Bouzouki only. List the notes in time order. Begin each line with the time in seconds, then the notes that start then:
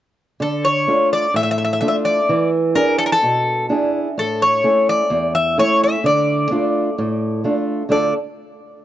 0.42 A4
0.65 C#5
1.13 D5
1.36 E5
1.43 E5
1.51 E5
1.58 E5
1.64 E5
1.73 E5
1.81 E5
1.88 E5
2.05 D5
2.75 A#4
2.98 A4
3.06 A#4
3.12 A4
4.19 A4
4.42 C#5
4.89 D5
5.35 E5
5.59 C#5
5.83 E5
6.06 D5
7.92 D5